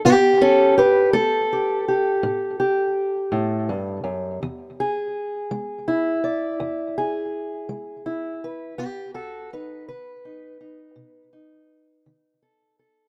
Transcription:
steel-string acoustic guitar
0.05 A2 B3 G4
0.41 C#4 A4
0.78 G4 B4
1.13 A3 A4
1.53 G4
1.88 G4
2.23 A2
2.60 G4
3.32 A2
3.69 G2
4.04 F#2
4.43 E2
4.80 G#4
5.51 G#3
5.88 E4
6.24 D5
6.60 E2
6.98 G#4
7.69 G#3
8.06 E4
8.44 B4
8.78 B2 B3 G4
9.14 F#4 A4
9.53 D#4 B4
9.88 D#3 B4
10.25 D#4
10.61 D#4
10.96 B2
11.33 D#4
12.06 D#3
12.43 A4
12.79 A4

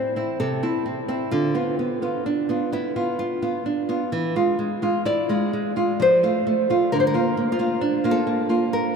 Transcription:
nylon-string guitar
Already playing: C4 C5
0.16 C4 E4
0.40 C3 A4
0.63 C4 E4
0.86 C4
1.08 C4 E4
1.31 D3 F4
1.55 B3 F4
1.79 B3
2.02 B3 F4
2.26 D4
2.49 B3 F4
2.72 B3 E4
2.96 B3 F4
3.19 F4
3.42 B3 F4
3.66 D4
3.89 B3 F4
4.12 E3
4.36 G#3 F4
4.59 G#3
4.82 G#3 F4
5.05 E4 D5
5.29 G#3 F4
5.53 G#3
5.76 G#3 F4
6.00 F3 C5
6.23 A3 F4
6.47 A3
6.70 A3 F4
6.92 D3 A#4
7.00 C5
7.07 A#4
7.14 A#3 F4
7.37 A#3
7.52 F4
7.59 A#3 F4
7.81 D4
8.04 A#3 F4
8.11 A4
8.27 A#3
8.49 A#3 F4
8.73 A#4

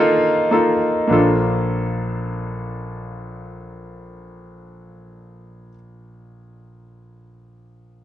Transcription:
grand piano
Already playing: A#2 A#3 D#4 F4 A4 A#4
0.51 A#3 D#4 F4 A4
1.07 A#1 A#3 D4 F4
1.12 A4

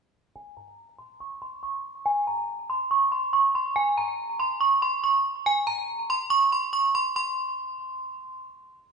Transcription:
synth bell
0.36 G#5
0.57 A#5
0.98 C6
1.20 C#6
1.42 C6
1.63 C#6
2.06 G#5
2.27 A#5
2.70 C6
2.91 C#6
3.12 C6
3.33 C#6
3.55 C6
3.76 G#5
3.97 A#5
4.40 C6
4.61 C#6
4.82 C6
5.04 C#6
5.46 G#5
5.67 A#5
6.10 C6
6.30 C#6
6.52 C6
6.73 C#6
6.95 C6
7.16 C6

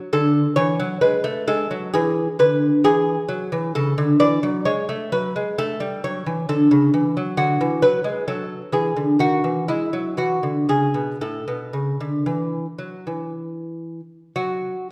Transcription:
lute
0.13 D3 A4
0.56 E3 C#5
0.80 F#3
1.01 G#3 B4
1.24 A3
1.47 G#3 A4
1.71 F#3
1.94 E3 G#4
2.39 D3 B4
2.84 E3 G#4
3.29 F#3
3.52 E3
3.75 C#3 A4
3.98 D3
4.20 E3 D5
4.43 F#3
4.65 G#3 C#5
4.89 A3
5.12 F#3 B4
5.36 G#3
5.58 A3 A4
5.80 G3
6.04 F#3 C#5
6.26 E3
6.49 D3 A4
6.71 C#3
6.94 E3
7.17 F#3
7.37 D3 F#4
7.61 E3
7.82 F#3 B4
8.04 G#3
8.28 F#3 A4
8.72 E3 G#4
8.96 D3
9.19 D#3 F#4
9.44 E3
9.68 G#3 E4
9.93 F#3
10.17 E3 F#4
10.43 D3
10.69 C#3 G#4
10.94 B2
11.21 A2 A4
11.48 B2
11.73 C#3
12.00 D3
12.26 E3
12.79 F#3
13.07 E3
14.36 F#3 F#4

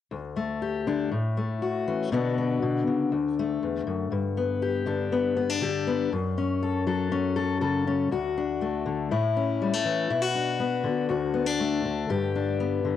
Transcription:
steel-string acoustic guitar
0.11 D2
0.36 A3
0.62 G4
0.87 D3 D4
1.11 A2
1.37 A3
1.62 F#4
1.88 E3 C#4
2.12 B2 D3 B3 D4 F#4
2.38 B3
2.62 B2
2.87 C#3
3.12 D2
3.39 A3
3.63 E2
3.87 F#2
4.12 G2
4.37 B3
4.62 G4
4.86 D3 D4
5.12 B3
5.37 B3
5.50 D4
5.61 D3 G4
5.87 B3
6.12 F#2
6.38 C#4
6.62 A4
6.86 F#3 A4
7.11 C#4
7.36 A4
7.61 C#3 A4
7.87 C#4
8.11 D2 F#4
8.37 D4
8.61 A3
8.86 D3
9.11 A2 E4
9.37 C#4
9.62 G3
9.73 A3
9.85 E3
10.10 B2 E4
10.22 F#4
10.35 D4
10.60 B3
10.84 D3
11.09 D2 F#4
11.34 B3
11.46 D4
11.60 A3
11.84 D3
12.09 G2 G4
12.35 D4
12.60 B3
12.85 D3

